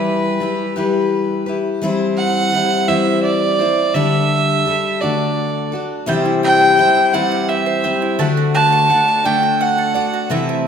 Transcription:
0.00 0.78 E3 medium
0.00 0.40 G3 medium
0.00 0.41 E4 medium
0.00 0.41 G4 medium
0.00 0.42 B4 medium
0.00 0.77 B4 medium
0.40 0.76 G3 medium
0.40 0.76 E4 medium
0.40 0.75 G4 medium
0.40 0.75 B4 medium
0.76 1.48 E3 medium
0.76 1.82 G3 soft
0.76 1.48 E4 medium
0.76 1.48 G4 medium
0.76 1.45 B4 medium
0.76 1.53 B4 medium
1.46 1.83 E4 soft
1.46 1.83 G4 soft
1.46 1.82 B4 soft
1.82 2.53 E3 medium
1.82 2.51 G3 medium
1.82 2.52 C4 medium
1.82 2.53 E4 medium
1.82 2.54 C5 medium
2.17 2.89 F#5 loud
2.52 2.88 G3 medium
2.52 2.88 C4 medium
2.52 2.87 E4 medium
2.52 2.87 C5 medium
2.88 3.60 E3 soft
2.88 3.60 G3 medium
2.88 3.60 C4 medium
2.88 3.59 E4 medium
2.88 3.58 C5 medium
2.88 3.23 E5 medium
3.23 3.96 D5 medium
3.59 3.95 C4 soft
3.59 3.95 E4 soft
3.59 3.95 C5 medium
3.94 4.65 D3 medium
3.94 4.64 G3 medium
3.94 4.65 D4 medium
3.94 4.66 G4 medium
3.94 4.66 A4 medium
3.94 5.02 E5 medium
4.65 5.01 G3 soft
4.65 5.01 D4 medium
4.65 5.02 G4 medium
4.65 5.00 A4 medium
5.01 5.73 D3 soft
5.01 5.73 A3 soft
5.01 5.73 D4 medium
5.01 5.72 F#4 medium
5.01 5.71 A4 medium
5.01 5.81 D5 medium
5.72 6.07 D4 soft
5.72 6.07 F#4 soft
5.72 6.07 A4 medium
6.06 6.77 C3 medium
6.06 6.78 E3 medium
6.06 6.76 G3 medium
6.06 7.13 G3 medium
6.06 6.77 C4 medium
6.06 6.78 E4 medium
6.06 6.79 C5 medium
6.06 6.42 G5 medium
6.25 6.95 E4 medium
6.43 6.78 G5 medium
6.43 7.15 G5 loud
6.61 7.65 C5 medium
6.77 7.13 G3 medium
6.77 7.14 C4 medium
6.77 7.13 E4 medium
6.77 7.12 C5 medium
6.77 7.14 G5 medium
6.96 7.30 E4 soft
7.13 7.85 C3 soft
7.13 7.85 E3 medium
7.13 8.18 G3 medium
7.13 7.85 G3 medium
7.13 7.84 C4 medium
7.13 7.84 E4 medium
7.13 7.82 C5 medium
7.13 7.50 F#5 medium
7.32 8.01 E4 medium
7.49 8.19 E5 medium
7.49 7.83 G5 medium
7.66 8.26 C5 medium
7.83 8.19 G3 soft
7.83 8.20 C4 soft
7.83 8.20 E4 medium
7.83 8.19 C5 medium
7.83 8.19 G5 medium
8.02 8.27 E4 soft
8.19 8.90 D3 medium
8.19 9.25 A3 medium
8.19 8.88 A3 medium
8.19 8.89 D4 medium
8.19 8.89 F#4 medium
8.19 8.90 D5 medium
8.19 8.54 F#5 medium
8.37 9.07 F#4 medium
8.54 8.89 F#5 medium
8.54 9.27 A5 loud
8.72 9.78 A4 medium
8.88 9.24 A3 medium
8.88 9.24 D4 medium
8.88 9.26 F#4 medium
8.88 9.23 D5 medium
8.88 9.25 F#5 medium
9.08 9.42 F#4 soft
9.24 9.96 D3 soft
9.24 10.30 A3 medium
9.24 9.96 D4 medium
9.24 9.93 D5 medium
9.24 9.63 G5 medium
9.43 10.12 F#4 medium
9.61 9.94 F#5 medium
9.61 10.32 F#5 medium
9.78 10.68 A4 medium
9.94 10.30 D4 soft
9.94 10.31 F#4 soft
9.94 10.31 D5 medium
9.94 10.31 F#5 medium
10.14 10.38 F#4 medium
10.30 10.68 C3 medium
10.30 10.68 E3 medium
10.30 10.68 A3 medium
10.30 10.68 C4 medium
10.30 10.68 E4 medium
10.30 10.68 B4 medium
10.30 10.65 E5 medium
10.49 10.68 E4 medium

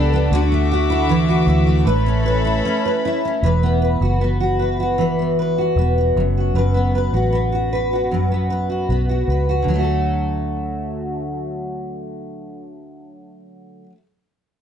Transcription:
0.00 0.28 C#2 medium
0.00 0.39 G3 medium
0.00 0.12 B3 medium
0.00 0.40 D4 medium
0.00 0.28 A4 medium
0.00 0.33 A4 medium
0.00 0.28 G5 medium
0.00 0.28 B5 medium
0.13 0.40 B3 medium
0.30 1.44 D2 loud
0.30 1.95 D3 medium
0.30 1.85 F#4 medium
0.30 0.70 F#4 medium
0.30 1.85 E5 medium
0.30 1.85 D6 medium
0.52 1.66 A3 medium
0.72 1.27 F#4 medium
0.90 1.48 E4 medium
1.09 1.86 E3 medium
1.29 1.87 F#4 medium
1.47 1.83 D2 loud
1.47 2.45 E4 medium
1.67 1.86 A3 medium
1.86 2.60 A1 loud
1.86 3.43 A3 medium
1.86 3.41 A4 medium
1.86 2.25 B4 medium
1.86 3.41 C#5 medium
1.86 3.41 B5 medium
2.06 2.64 C#4 medium
2.26 2.85 B4 medium
2.45 3.05 E4 medium
2.65 3.23 C#4 medium
2.85 3.44 B4 medium
3.05 4.02 E4 medium
3.25 3.51 C#4 medium
3.43 3.97 E1 medium
3.43 4.97 E3 medium
3.43 3.82 B4 medium
3.63 4.21 B3 medium
3.82 4.59 B4 medium
4.01 5.72 F#1 medium
4.01 4.40 F#4 medium
4.21 5.19 B3 medium
4.40 4.79 F#4 medium
4.59 4.99 B4 medium
4.80 5.58 F#4 medium
4.98 6.23 E3 medium
4.98 5.39 B4 medium
5.19 5.78 B3 medium
5.39 6.56 B4 medium
5.58 5.97 F#4 medium
5.76 6.12 E1 medium
5.76 6.74 B3 medium
5.98 6.37 F#4 soft
6.16 6.51 F#1 medium
6.16 6.54 F#2 medium
6.37 7.13 F#4 soft
6.55 7.09 F#1 medium
6.55 8.10 F#2 medium
6.55 6.94 B4 medium
6.74 7.31 B3 soft
6.95 7.71 B4 medium
7.13 8.84 A1 medium
7.13 7.52 F#4 medium
7.33 8.30 B3 medium
7.52 7.92 F#4 soft
7.73 8.11 B4 medium
7.93 8.69 F#4 soft
8.11 9.75 F#2 medium
8.11 8.49 B4 soft
8.32 8.89 B3 medium
8.50 9.28 B4 medium
8.70 9.09 F#4 soft
8.89 9.24 B1 medium
8.89 9.73 B3 soft
9.09 9.49 F#4 soft
9.28 9.63 C#2 medium
9.28 9.75 B4 medium
9.49 9.78 F#4 soft
9.62 13.84 D2 medium
9.62 13.84 D3 medium
9.68 13.90 F#3 medium
9.74 13.95 A3 medium
9.79 14.00 F#4 medium
9.79 14.04 A4 medium

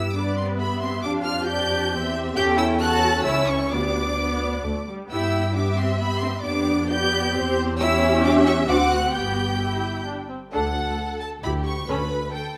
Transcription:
0.00 1.01 G2 medium
0.00 0.12 B3 medium
0.00 0.11 E4 loud
0.00 0.12 G4 medium
0.00 0.12 E6 loud
0.14 1.03 B3 medium
0.14 0.37 D4 medium
0.14 0.60 B4 medium
0.14 0.57 D5 medium
0.14 0.37 D6 medium
0.36 0.59 C4 medium
0.36 0.45 C6 medium
0.58 0.81 B3 medium
0.58 1.93 G4 medium
0.58 1.04 E5 medium
0.58 0.82 B5 loud
0.81 0.89 C4 medium
0.81 1.04 C6 loud
1.03 1.92 F2 loud
1.03 1.26 D4 loud
1.03 1.49 D4 medium
1.03 1.49 F5 medium
1.03 1.11 D6 loud
1.24 1.48 F4 loud
1.24 1.47 F6 loud
1.47 1.93 D4 medium
1.47 2.15 G4 loud
1.47 2.13 G6 loud
1.51 1.94 D5 medium
1.94 2.36 E2 medium
1.94 2.38 C4 medium
1.94 2.37 G4 medium
1.94 2.37 E5 loud
2.36 3.25 E2 loud
2.36 2.81 C#4 loud
2.36 2.58 G4 loud
2.36 2.81 A4 medium
2.36 2.83 G5 medium
2.36 2.45 G6 loud
2.58 2.81 E4 loud
2.58 2.66 E6 loud
2.81 3.71 C#4 loud
2.81 3.26 F#4 loud
2.81 3.26 A4 loud
2.81 3.27 A5 loud
2.81 3.26 F#6 loud
3.25 3.71 C#2 loud
3.25 3.49 E4 loud
3.25 3.72 E4 medium
3.25 3.71 C#5 loud
3.25 3.48 E6 loud
3.48 3.72 C#4 loud
3.48 3.72 C#6 loud
3.72 4.62 D2 medium
3.72 4.14 B3 medium
3.72 4.87 D4 loud
3.72 4.13 G4 medium
3.72 4.88 D5 medium
3.72 4.87 D6 loud
4.18 4.61 B3 loud
4.63 4.71 D2 medium
4.63 4.88 A3 medium
4.88 5.10 G3 medium
5.10 6.40 G2 medium
5.10 5.53 B3 medium
5.10 5.53 E4 loud
5.10 5.53 G4 medium
5.10 5.53 G5 medium
5.10 5.53 E6 loud
5.55 5.99 B3 medium
5.55 5.78 D4 medium
5.55 5.99 G4 medium
5.55 6.43 E5 loud
5.55 5.78 D6 medium
5.77 5.99 C4 loud
5.77 6.00 C6 loud
5.99 6.07 B3 loud
5.99 6.43 B3 medium
5.99 6.43 G4 medium
5.99 6.21 B5 loud
6.21 6.30 C4 loud
6.21 6.44 C6 loud
6.43 7.33 F2 medium
6.43 6.89 B3 medium
6.43 6.89 D4 loud
6.43 6.89 G4 medium
6.43 7.36 D5 medium
6.43 6.89 D6 loud
6.90 7.35 B3 loud
6.90 7.58 G4 loud
6.90 7.34 G4 loud
6.90 7.56 G6 loud
7.35 8.68 E2 loud
7.35 7.80 C4 loud
7.35 7.79 G4 loud
7.35 7.80 C5 loud
7.78 8.67 C#4 loud
7.78 8.21 E4 loud
7.78 8.67 G4 loud
7.78 8.24 C#5 loud
7.78 8.20 E6 loud
8.23 8.46 D4 loud
8.23 8.67 E5 loud
8.23 8.32 D6 loud
8.45 8.68 C#4 loud
8.45 8.55 C#6 loud
8.67 9.14 D2 loud
8.67 9.14 C4 medium
8.67 8.75 D4 loud
8.67 9.15 F#4 loud
8.67 9.14 F#5 loud
8.67 8.91 D6 loud
8.91 9.14 F#4 loud
8.91 9.14 F#6 loud
9.12 10.33 G1 medium
9.12 9.56 B3 medium
9.12 10.04 G4 loud
9.12 9.55 G4 medium
9.12 10.30 G5 medium
9.12 10.05 G6 loud
9.61 10.04 E4 loud
10.07 10.31 D4 medium
10.29 10.37 C4 medium
10.52 10.91 D2 medium
10.52 10.91 D2 loud
10.52 10.74 D4 medium
10.52 10.74 A4 medium
10.52 11.39 A4 medium
10.52 11.17 F#5 loud
11.21 11.29 A5 loud
11.42 11.80 D2 medium
11.42 11.80 D2 loud
11.42 11.64 E4 medium
11.42 11.64 G4 medium
11.42 11.87 G4 medium
11.42 11.52 B5 loud
11.66 11.88 C#6 loud
11.87 12.25 D2 medium
11.87 12.09 C#4 medium
11.87 12.09 A4 medium
11.87 12.32 B4 medium
11.87 12.34 B5 loud
12.33 12.57 A4 medium
12.33 12.55 G5 loud

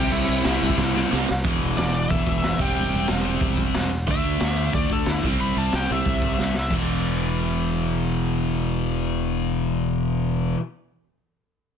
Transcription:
0.00 0.44 C3 medium
0.00 0.45 G3 loud
0.00 0.46 C4 loud
0.00 0.11 G4 medium
0.00 0.11 G5 loud
0.12 0.25 C2 loud
0.12 1.07 E4 medium
0.12 1.07 E5 medium
0.12 crash medium
0.27 0.42 C2 medium
0.27 crash medium
0.44 0.58 C2 loud
0.44 0.94 C3 medium
0.44 0.94 G3 medium
0.44 0.93 C4 loud
0.44 snare loud
0.44 crash medium
0.61 0.75 C2 medium
0.61 crash medium
0.69 kick medium
0.78 1.03 C2 loud
0.78 kick loud
0.78 snare medium
0.94 1.28 C3 medium
0.94 1.27 G3 medium
0.94 1.26 C4 medium
0.94 snare medium
1.11 1.25 C2 loud
1.11 1.27 C3 medium
1.11 1.27 G3 medium
1.11 1.28 C4 medium
1.11 snare loud
1.29 1.42 C2 medium
1.29 snare loud
1.44 1.59 E1 medium
1.44 2.08 E2 medium
1.44 2.10 B2 medium
1.44 2.10 E3 medium
1.44 kick loud
1.44 open hi-hat medium
1.61 1.77 E1 medium
1.61 open hi-hat medium
1.77 2.08 E1 medium
1.77 1.93 D5 loud
1.77 snare loud
1.77 open hi-hat medium
1.94 2.11 D5 medium
1.94 open hi-hat medium
2.09 2.25 E1 medium
2.09 2.58 E2 medium
2.09 2.57 B2 medium
2.09 2.59 E3 medium
2.09 2.58 E5 medium
2.09 kick loud
2.09 open hi-hat medium
2.27 2.42 E1 medium
2.27 kick medium
2.27 open hi-hat medium
2.43 2.59 E1 medium
2.43 snare loud
2.43 open hi-hat medium
2.58 2.74 E1 medium
2.58 3.24 C3 medium
2.58 3.24 G3 medium
2.58 3.23 C4 loud
2.58 2.74 G5 medium
2.58 kick medium
2.58 open hi-hat medium
2.75 2.92 E1 medium
2.75 3.08 G5 medium
2.75 open hi-hat medium
2.92 3.08 E1 medium
2.92 open hi-hat medium
3.08 3.24 E1 medium
3.08 snare loud
3.08 open hi-hat medium
3.24 3.40 E1 medium
3.24 3.91 C3 medium
3.24 3.90 G3 medium
3.24 3.90 C4 medium
3.24 open hi-hat medium
3.41 3.71 E1 medium
3.41 kick loud
3.41 open hi-hat medium
3.57 kick medium
3.57 open hi-hat medium
3.74 4.05 E1 medium
3.74 snare loud
3.74 open hi-hat medium
3.90 open hi-hat medium
4.07 4.22 D2 loud
4.07 4.72 D3 medium
4.07 4.73 A3 medium
4.07 4.74 D4 medium
4.07 kick loud
4.07 open hi-hat medium
4.11 4.73 E5 loud
4.24 4.39 D2 medium
4.24 open hi-hat medium
4.40 4.70 D2 medium
4.40 snare loud
4.40 open hi-hat medium
4.57 open hi-hat medium
4.73 4.88 D2 medium
4.73 5.22 D3 medium
4.73 5.23 A3 medium
4.73 5.24 D4 medium
4.73 4.90 D5 medium
4.73 kick loud
4.73 open hi-hat medium
4.89 5.05 D2 medium
4.89 5.07 A4 medium
4.89 kick medium
4.89 open hi-hat medium
5.06 5.21 D2 medium
5.06 5.24 E4 loud
5.06 snare loud
5.06 open hi-hat medium
5.23 5.38 C2 medium
5.23 5.88 C3 medium
5.23 5.89 G3 loud
5.23 5.88 C4 medium
5.23 kick medium
5.23 open hi-hat soft
5.40 5.55 C2 medium
5.40 5.58 B5 medium
5.40 open hi-hat medium
5.56 5.71 C2 medium
5.56 5.75 A5 medium
5.56 open hi-hat medium
5.72 5.88 C2 medium
5.72 5.90 G5 medium
5.72 snare loud
5.72 open hi-hat medium
5.89 6.05 C2 medium
5.89 6.56 C3 medium
5.89 6.55 G3 medium
5.89 6.54 C4 medium
5.89 6.54 E5 loud
5.89 open hi-hat medium
6.05 6.35 C2 medium
6.05 kick loud
6.05 open hi-hat medium
6.22 kick medium
6.22 open hi-hat soft
6.38 6.68 C2 medium
6.38 snare medium
6.54 snare medium
6.59 6.73 E5 medium
6.70 10.53 E1 medium
6.70 10.56 E2 medium
6.70 10.59 B2 medium
6.70 kick medium
6.70 crash medium
6.74 10.60 E3 loud

